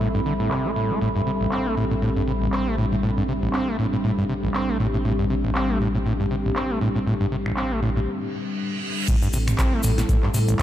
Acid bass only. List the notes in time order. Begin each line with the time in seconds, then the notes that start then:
0.01 A2
0.15 G2
0.26 D3
0.40 A2
0.51 C3
0.65 A3
0.76 A2
0.91 A3
1.02 A2
1.16 G2
1.27 C3
1.41 A1
1.52 C4
1.66 A3
1.77 A2
1.91 A2
2.02 A2
2.17 G2
2.28 C3
2.42 A1
2.53 C4
2.67 A3
2.78 A2
2.92 A2
3.03 A2
3.17 G2
3.28 C3
3.43 A1
3.54 C4
3.68 A3
3.79 A2
3.93 A2
4.04 A2
4.18 G2
4.29 C3
4.44 A1
4.55 C4
4.69 A3
4.80 A2
4.94 A2
5.05 A2
5.19 G2
5.30 C3
5.44 A1
5.55 C4
5.70 A3
5.81 A2
5.95 A2
6.06 A2
6.20 G2
6.31 C3
6.45 A1
6.56 C4
6.70 A3
6.81 A2
6.96 A2
7.07 A2
7.21 G2
7.32 C3
7.46 A1
7.57 C4
7.71 A3
7.82 A2
7.96 A2
9.08 A2
9.23 G2
9.34 C3
9.48 A1
9.59 C4
9.73 A3
9.84 A2
9.98 A2
10.09 A2
10.23 G2
10.34 C3
10.48 A1